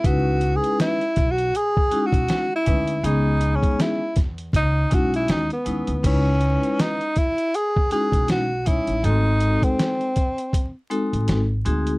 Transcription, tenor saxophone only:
0.06 0.58 F#4 loud
0.56 0.80 G#4 loud
0.81 1.32 E4 loud
1.31 1.58 F#4 loud
1.56 2.08 G#4 loud
2.06 2.55 F#4 loud
2.56 3.07 E4 loud
3.06 3.57 D#4 medium
3.56 3.83 C#4 medium
3.81 4.18 E4 medium
4.56 4.95 D#4 loud
4.94 5.14 F#4 loud
5.16 5.33 E4 loud
5.31 5.51 D#4 medium
5.53 6.02 B3 medium
6.06 6.83 C#4 medium
6.81 7.19 D#4 medium
7.18 7.57 E4 medium
7.55 7.92 G#4 loud
7.92 8.27 G#4 loud
8.31 8.69 F#4 loud
8.67 9.06 E4 medium
9.04 9.65 D#4 loud
9.64 10.76 C4 medium

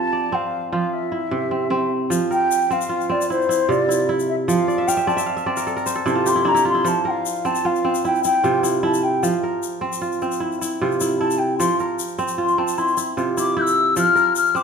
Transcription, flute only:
0.00 0.36 A5 loud
0.34 0.72 F5 medium
0.73 0.94 F5 medium
0.93 1.92 E5 medium
2.32 2.74 G5 medium
2.72 3.13 F5 medium
3.11 3.29 D5 medium
3.30 3.72 C5 medium
3.70 4.10 D5 medium
4.29 4.35 E5 medium
4.49 4.89 F5 loud
4.88 5.09 G5 loud
5.08 5.48 A5 medium
6.09 6.30 A5 loud
6.28 6.49 C6 loud
6.48 6.67 A#5 loud
6.68 6.89 C6 medium
6.88 7.08 A5 medium
7.07 7.47 F5 medium
7.07 7.11 G5 medium
7.46 7.67 A5 loud
7.65 8.05 F5 medium
8.05 8.23 G5 medium
8.24 8.61 G5 medium
8.84 9.05 A5 medium
9.03 9.24 G5 medium
9.23 9.43 F5 medium
11.20 11.40 A5 medium
11.38 11.57 G5 medium
11.58 11.77 C6 loud
12.40 12.60 C6 medium
12.58 12.80 A5 medium
12.78 12.98 C6 medium
13.39 13.56 D6 medium
13.58 13.94 E6 loud
13.58 13.63 G6 medium
13.98 14.33 F6 loud
14.36 14.58 F6 medium
14.56 14.63 D6 loud

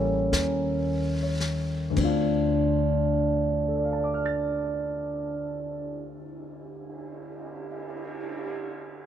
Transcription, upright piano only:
0.00 1.97 G3 soft
0.00 1.98 A#3 soft
0.00 1.98 C#4 soft
0.00 1.99 E4 soft
0.00 1.99 A4 soft
0.33 1.65 A#4 soft
1.23 2.42 C#5 soft
1.90 6.11 D2 soft
1.90 6.15 D3 soft
1.97 6.18 C4 soft
1.97 6.21 D4 soft
2.04 6.24 F4 soft
3.68 7.85 A4 soft
3.76 7.92 D5 soft
3.84 8.01 F5 soft
3.93 8.09 A5 soft
4.04 8.21 D6 soft
4.14 8.31 F6 soft
4.26 8.42 A6 soft

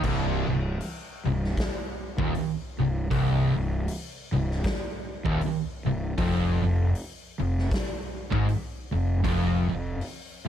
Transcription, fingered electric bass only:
0.04 0.46 C1 loud
0.49 0.78 C1 medium
1.26 1.55 C1 medium
2.18 2.33 D#1 loud
2.80 3.09 C1 medium
3.11 3.53 C1 medium
3.57 3.86 C1 medium
4.34 4.63 C1 medium
5.25 5.40 D#1 loud
5.86 6.15 C1 medium
6.18 6.60 F1 loud
6.63 6.92 F1 medium
7.40 7.69 F1 medium
8.32 8.47 G#1 loud
8.94 9.23 F1 medium
9.24 9.66 F1 medium
9.71 9.99 F1 medium

